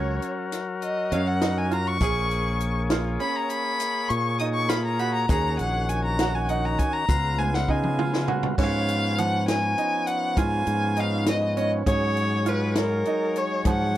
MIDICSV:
0, 0, Header, 1, 6, 480
1, 0, Start_track
1, 0, Tempo, 597015
1, 1622, Time_signature, 11, 3, 24, 8
1, 11235, End_track
2, 0, Start_track
2, 0, Title_t, "Violin"
2, 0, Program_c, 0, 40
2, 0, Note_on_c, 0, 73, 68
2, 182, Note_off_c, 0, 73, 0
2, 664, Note_on_c, 0, 75, 72
2, 904, Note_on_c, 0, 77, 78
2, 916, Note_off_c, 0, 75, 0
2, 1025, Note_on_c, 0, 78, 79
2, 1037, Note_off_c, 0, 77, 0
2, 1269, Note_on_c, 0, 80, 82
2, 1281, Note_off_c, 0, 78, 0
2, 1391, Note_on_c, 0, 82, 94
2, 1403, Note_off_c, 0, 80, 0
2, 1501, Note_on_c, 0, 85, 104
2, 1513, Note_off_c, 0, 82, 0
2, 2222, Note_off_c, 0, 85, 0
2, 2577, Note_on_c, 0, 83, 86
2, 2699, Note_on_c, 0, 82, 81
2, 2711, Note_off_c, 0, 83, 0
2, 2809, Note_on_c, 0, 83, 95
2, 2821, Note_off_c, 0, 82, 0
2, 3289, Note_on_c, 0, 85, 97
2, 3301, Note_off_c, 0, 83, 0
2, 3528, Note_off_c, 0, 85, 0
2, 3532, Note_on_c, 0, 87, 97
2, 3589, Note_off_c, 0, 87, 0
2, 3651, Note_on_c, 0, 85, 92
2, 3770, Note_on_c, 0, 83, 93
2, 3782, Note_off_c, 0, 85, 0
2, 3894, Note_off_c, 0, 83, 0
2, 3899, Note_on_c, 0, 82, 85
2, 4015, Note_on_c, 0, 83, 96
2, 4027, Note_off_c, 0, 82, 0
2, 4131, Note_off_c, 0, 83, 0
2, 4136, Note_on_c, 0, 82, 91
2, 4251, Note_off_c, 0, 82, 0
2, 4262, Note_on_c, 0, 82, 102
2, 4486, Note_off_c, 0, 82, 0
2, 4498, Note_on_c, 0, 78, 86
2, 4736, Note_on_c, 0, 80, 92
2, 4748, Note_off_c, 0, 78, 0
2, 4856, Note_off_c, 0, 80, 0
2, 4861, Note_on_c, 0, 82, 91
2, 5103, Note_on_c, 0, 80, 78
2, 5115, Note_off_c, 0, 82, 0
2, 5217, Note_on_c, 0, 78, 79
2, 5229, Note_off_c, 0, 80, 0
2, 5348, Note_on_c, 0, 82, 77
2, 5360, Note_off_c, 0, 78, 0
2, 5454, Note_on_c, 0, 80, 87
2, 5466, Note_off_c, 0, 82, 0
2, 5576, Note_on_c, 0, 82, 103
2, 5588, Note_off_c, 0, 80, 0
2, 5937, Note_on_c, 0, 80, 88
2, 5949, Note_off_c, 0, 82, 0
2, 6065, Note_on_c, 0, 78, 76
2, 6077, Note_off_c, 0, 80, 0
2, 6194, Note_on_c, 0, 80, 79
2, 6206, Note_off_c, 0, 78, 0
2, 6669, Note_off_c, 0, 80, 0
2, 6914, Note_on_c, 0, 77, 105
2, 7384, Note_on_c, 0, 78, 101
2, 7396, Note_off_c, 0, 77, 0
2, 7619, Note_off_c, 0, 78, 0
2, 7624, Note_on_c, 0, 80, 93
2, 8097, Note_on_c, 0, 78, 89
2, 8109, Note_off_c, 0, 80, 0
2, 8348, Note_on_c, 0, 80, 96
2, 8360, Note_off_c, 0, 78, 0
2, 8843, Note_on_c, 0, 77, 87
2, 8855, Note_off_c, 0, 80, 0
2, 9070, Note_off_c, 0, 77, 0
2, 9075, Note_on_c, 0, 75, 89
2, 9293, Note_off_c, 0, 75, 0
2, 9306, Note_on_c, 0, 75, 92
2, 9413, Note_off_c, 0, 75, 0
2, 9547, Note_on_c, 0, 73, 104
2, 10035, Note_on_c, 0, 71, 88
2, 10047, Note_off_c, 0, 73, 0
2, 10269, Note_off_c, 0, 71, 0
2, 10279, Note_on_c, 0, 70, 84
2, 10755, Note_on_c, 0, 73, 78
2, 10767, Note_off_c, 0, 70, 0
2, 10989, Note_off_c, 0, 73, 0
2, 10994, Note_on_c, 0, 78, 78
2, 11235, Note_off_c, 0, 78, 0
2, 11235, End_track
3, 0, Start_track
3, 0, Title_t, "Grand piano"
3, 0, Program_c, 1, 0
3, 0, Note_on_c, 1, 61, 67
3, 362, Note_off_c, 1, 61, 0
3, 898, Note_on_c, 1, 61, 67
3, 1110, Note_off_c, 1, 61, 0
3, 1139, Note_on_c, 1, 63, 80
3, 1351, Note_off_c, 1, 63, 0
3, 1376, Note_on_c, 1, 65, 70
3, 1589, Note_off_c, 1, 65, 0
3, 1620, Note_on_c, 1, 68, 90
3, 2042, Note_off_c, 1, 68, 0
3, 2340, Note_on_c, 1, 65, 79
3, 2552, Note_off_c, 1, 65, 0
3, 2575, Note_on_c, 1, 61, 66
3, 3000, Note_off_c, 1, 61, 0
3, 3539, Note_on_c, 1, 63, 73
3, 3751, Note_off_c, 1, 63, 0
3, 3774, Note_on_c, 1, 65, 79
3, 3989, Note_off_c, 1, 65, 0
3, 4014, Note_on_c, 1, 66, 80
3, 4229, Note_off_c, 1, 66, 0
3, 4260, Note_on_c, 1, 68, 87
3, 4683, Note_off_c, 1, 68, 0
3, 4983, Note_on_c, 1, 66, 84
3, 5194, Note_off_c, 1, 66, 0
3, 5221, Note_on_c, 1, 63, 72
3, 5643, Note_off_c, 1, 63, 0
3, 6180, Note_on_c, 1, 63, 75
3, 6392, Note_off_c, 1, 63, 0
3, 6423, Note_on_c, 1, 65, 86
3, 6634, Note_off_c, 1, 65, 0
3, 6656, Note_on_c, 1, 66, 82
3, 6870, Note_off_c, 1, 66, 0
3, 6901, Note_on_c, 1, 61, 90
3, 7323, Note_off_c, 1, 61, 0
3, 7384, Note_on_c, 1, 53, 72
3, 7805, Note_off_c, 1, 53, 0
3, 7862, Note_on_c, 1, 63, 69
3, 8283, Note_off_c, 1, 63, 0
3, 8339, Note_on_c, 1, 65, 81
3, 8762, Note_off_c, 1, 65, 0
3, 8816, Note_on_c, 1, 63, 73
3, 9240, Note_off_c, 1, 63, 0
3, 9301, Note_on_c, 1, 61, 79
3, 9512, Note_off_c, 1, 61, 0
3, 9538, Note_on_c, 1, 61, 80
3, 9961, Note_off_c, 1, 61, 0
3, 10019, Note_on_c, 1, 65, 69
3, 10442, Note_off_c, 1, 65, 0
3, 10505, Note_on_c, 1, 63, 76
3, 10925, Note_off_c, 1, 63, 0
3, 10987, Note_on_c, 1, 53, 79
3, 11235, Note_off_c, 1, 53, 0
3, 11235, End_track
4, 0, Start_track
4, 0, Title_t, "Tonewheel organ"
4, 0, Program_c, 2, 16
4, 0, Note_on_c, 2, 54, 52
4, 0, Note_on_c, 2, 66, 53
4, 0, Note_on_c, 2, 70, 64
4, 1589, Note_off_c, 2, 54, 0
4, 1590, Note_off_c, 2, 66, 0
4, 1592, Note_off_c, 2, 70, 0
4, 1618, Note_on_c, 2, 58, 61
4, 1622, Note_on_c, 2, 73, 64
4, 1623, Note_on_c, 2, 68, 53
4, 4229, Note_off_c, 2, 58, 0
4, 4231, Note_off_c, 2, 73, 0
4, 4232, Note_off_c, 2, 68, 0
4, 4256, Note_on_c, 2, 51, 60
4, 4261, Note_on_c, 2, 61, 52
4, 4263, Note_on_c, 2, 66, 66
4, 5671, Note_off_c, 2, 51, 0
4, 5674, Note_off_c, 2, 61, 0
4, 5675, Note_off_c, 2, 66, 0
4, 5699, Note_on_c, 2, 49, 66
4, 5701, Note_on_c, 2, 59, 60
4, 5703, Note_on_c, 2, 65, 71
4, 6877, Note_off_c, 2, 49, 0
4, 6878, Note_off_c, 2, 59, 0
4, 6879, Note_off_c, 2, 65, 0
4, 6902, Note_on_c, 2, 59, 54
4, 6910, Note_on_c, 2, 61, 57
4, 6911, Note_on_c, 2, 53, 61
4, 9511, Note_off_c, 2, 59, 0
4, 9514, Note_off_c, 2, 61, 0
4, 9515, Note_off_c, 2, 53, 0
4, 9539, Note_on_c, 2, 56, 55
4, 9546, Note_on_c, 2, 54, 49
4, 9547, Note_on_c, 2, 73, 65
4, 11235, Note_off_c, 2, 54, 0
4, 11235, Note_off_c, 2, 56, 0
4, 11235, Note_off_c, 2, 73, 0
4, 11235, End_track
5, 0, Start_track
5, 0, Title_t, "Fingered electric bass"
5, 0, Program_c, 3, 33
5, 0, Note_on_c, 3, 37, 86
5, 147, Note_off_c, 3, 37, 0
5, 899, Note_on_c, 3, 42, 69
5, 1588, Note_off_c, 3, 42, 0
5, 1613, Note_on_c, 3, 34, 110
5, 2546, Note_off_c, 3, 34, 0
5, 3298, Note_on_c, 3, 46, 80
5, 4229, Note_off_c, 3, 46, 0
5, 4253, Note_on_c, 3, 39, 112
5, 4479, Note_off_c, 3, 39, 0
5, 4500, Note_on_c, 3, 34, 99
5, 5429, Note_off_c, 3, 34, 0
5, 5696, Note_on_c, 3, 37, 97
5, 6148, Note_off_c, 3, 37, 0
5, 6178, Note_on_c, 3, 49, 72
5, 6869, Note_off_c, 3, 49, 0
5, 6899, Note_on_c, 3, 44, 89
5, 7829, Note_off_c, 3, 44, 0
5, 8336, Note_on_c, 3, 44, 85
5, 8561, Note_off_c, 3, 44, 0
5, 8578, Note_on_c, 3, 44, 88
5, 9509, Note_off_c, 3, 44, 0
5, 9541, Note_on_c, 3, 44, 99
5, 10470, Note_off_c, 3, 44, 0
5, 10975, Note_on_c, 3, 44, 86
5, 11235, Note_off_c, 3, 44, 0
5, 11235, End_track
6, 0, Start_track
6, 0, Title_t, "Drums"
6, 178, Note_on_c, 9, 42, 62
6, 259, Note_off_c, 9, 42, 0
6, 419, Note_on_c, 9, 38, 32
6, 419, Note_on_c, 9, 42, 78
6, 500, Note_off_c, 9, 38, 0
6, 500, Note_off_c, 9, 42, 0
6, 659, Note_on_c, 9, 42, 54
6, 739, Note_off_c, 9, 42, 0
6, 899, Note_on_c, 9, 42, 55
6, 980, Note_off_c, 9, 42, 0
6, 1138, Note_on_c, 9, 38, 100
6, 1138, Note_on_c, 9, 42, 77
6, 1218, Note_off_c, 9, 38, 0
6, 1218, Note_off_c, 9, 42, 0
6, 1378, Note_on_c, 9, 42, 52
6, 1459, Note_off_c, 9, 42, 0
6, 1613, Note_on_c, 9, 42, 67
6, 1615, Note_on_c, 9, 36, 99
6, 1618, Note_on_c, 9, 82, 53
6, 1693, Note_off_c, 9, 42, 0
6, 1695, Note_off_c, 9, 36, 0
6, 1699, Note_off_c, 9, 82, 0
6, 1858, Note_on_c, 9, 42, 56
6, 1939, Note_off_c, 9, 42, 0
6, 2093, Note_on_c, 9, 42, 59
6, 2174, Note_off_c, 9, 42, 0
6, 2332, Note_on_c, 9, 38, 101
6, 2332, Note_on_c, 9, 42, 72
6, 2412, Note_off_c, 9, 38, 0
6, 2412, Note_off_c, 9, 42, 0
6, 2574, Note_on_c, 9, 42, 56
6, 2654, Note_off_c, 9, 42, 0
6, 2812, Note_on_c, 9, 42, 64
6, 2892, Note_off_c, 9, 42, 0
6, 3053, Note_on_c, 9, 42, 78
6, 3055, Note_on_c, 9, 82, 59
6, 3133, Note_off_c, 9, 42, 0
6, 3135, Note_off_c, 9, 82, 0
6, 3296, Note_on_c, 9, 42, 57
6, 3377, Note_off_c, 9, 42, 0
6, 3533, Note_on_c, 9, 42, 59
6, 3614, Note_off_c, 9, 42, 0
6, 3775, Note_on_c, 9, 38, 99
6, 3775, Note_on_c, 9, 42, 81
6, 3855, Note_off_c, 9, 38, 0
6, 3855, Note_off_c, 9, 42, 0
6, 4014, Note_on_c, 9, 42, 58
6, 4094, Note_off_c, 9, 42, 0
6, 4253, Note_on_c, 9, 42, 73
6, 4255, Note_on_c, 9, 36, 108
6, 4258, Note_on_c, 9, 82, 53
6, 4334, Note_off_c, 9, 42, 0
6, 4335, Note_off_c, 9, 36, 0
6, 4339, Note_off_c, 9, 82, 0
6, 4493, Note_on_c, 9, 42, 63
6, 4574, Note_off_c, 9, 42, 0
6, 4736, Note_on_c, 9, 42, 67
6, 4816, Note_off_c, 9, 42, 0
6, 4976, Note_on_c, 9, 38, 97
6, 4976, Note_on_c, 9, 42, 78
6, 5056, Note_off_c, 9, 38, 0
6, 5056, Note_off_c, 9, 42, 0
6, 5217, Note_on_c, 9, 42, 59
6, 5297, Note_off_c, 9, 42, 0
6, 5457, Note_on_c, 9, 82, 17
6, 5459, Note_on_c, 9, 36, 82
6, 5461, Note_on_c, 9, 42, 62
6, 5537, Note_off_c, 9, 82, 0
6, 5540, Note_off_c, 9, 36, 0
6, 5541, Note_off_c, 9, 42, 0
6, 5697, Note_on_c, 9, 42, 75
6, 5698, Note_on_c, 9, 36, 98
6, 5704, Note_on_c, 9, 82, 61
6, 5777, Note_off_c, 9, 42, 0
6, 5779, Note_off_c, 9, 36, 0
6, 5785, Note_off_c, 9, 82, 0
6, 5939, Note_on_c, 9, 48, 57
6, 5941, Note_on_c, 9, 82, 19
6, 6019, Note_off_c, 9, 48, 0
6, 6021, Note_off_c, 9, 82, 0
6, 6061, Note_on_c, 9, 38, 56
6, 6141, Note_off_c, 9, 38, 0
6, 6178, Note_on_c, 9, 36, 63
6, 6259, Note_off_c, 9, 36, 0
6, 6299, Note_on_c, 9, 47, 64
6, 6379, Note_off_c, 9, 47, 0
6, 6421, Note_on_c, 9, 45, 80
6, 6502, Note_off_c, 9, 45, 0
6, 6541, Note_on_c, 9, 38, 76
6, 6621, Note_off_c, 9, 38, 0
6, 6657, Note_on_c, 9, 43, 85
6, 6738, Note_off_c, 9, 43, 0
6, 6778, Note_on_c, 9, 43, 91
6, 6858, Note_off_c, 9, 43, 0
6, 6899, Note_on_c, 9, 36, 95
6, 6902, Note_on_c, 9, 49, 86
6, 6979, Note_off_c, 9, 36, 0
6, 6982, Note_off_c, 9, 49, 0
6, 7144, Note_on_c, 9, 42, 61
6, 7224, Note_off_c, 9, 42, 0
6, 7383, Note_on_c, 9, 42, 62
6, 7463, Note_off_c, 9, 42, 0
6, 7624, Note_on_c, 9, 38, 95
6, 7624, Note_on_c, 9, 42, 76
6, 7704, Note_off_c, 9, 38, 0
6, 7704, Note_off_c, 9, 42, 0
6, 7862, Note_on_c, 9, 42, 64
6, 7942, Note_off_c, 9, 42, 0
6, 8096, Note_on_c, 9, 42, 62
6, 8176, Note_off_c, 9, 42, 0
6, 8336, Note_on_c, 9, 36, 91
6, 8336, Note_on_c, 9, 42, 72
6, 8417, Note_off_c, 9, 36, 0
6, 8417, Note_off_c, 9, 42, 0
6, 8576, Note_on_c, 9, 42, 60
6, 8656, Note_off_c, 9, 42, 0
6, 8817, Note_on_c, 9, 42, 59
6, 8897, Note_off_c, 9, 42, 0
6, 9056, Note_on_c, 9, 38, 106
6, 9056, Note_on_c, 9, 42, 76
6, 9137, Note_off_c, 9, 38, 0
6, 9137, Note_off_c, 9, 42, 0
6, 9302, Note_on_c, 9, 42, 54
6, 9382, Note_off_c, 9, 42, 0
6, 9538, Note_on_c, 9, 36, 98
6, 9541, Note_on_c, 9, 42, 78
6, 9619, Note_off_c, 9, 36, 0
6, 9621, Note_off_c, 9, 42, 0
6, 9782, Note_on_c, 9, 42, 58
6, 9863, Note_off_c, 9, 42, 0
6, 10016, Note_on_c, 9, 42, 57
6, 10097, Note_off_c, 9, 42, 0
6, 10255, Note_on_c, 9, 38, 100
6, 10255, Note_on_c, 9, 42, 78
6, 10335, Note_off_c, 9, 38, 0
6, 10335, Note_off_c, 9, 42, 0
6, 10496, Note_on_c, 9, 42, 53
6, 10577, Note_off_c, 9, 42, 0
6, 10739, Note_on_c, 9, 42, 60
6, 10819, Note_off_c, 9, 42, 0
6, 10975, Note_on_c, 9, 42, 79
6, 10978, Note_on_c, 9, 36, 95
6, 11055, Note_off_c, 9, 42, 0
6, 11058, Note_off_c, 9, 36, 0
6, 11235, End_track
0, 0, End_of_file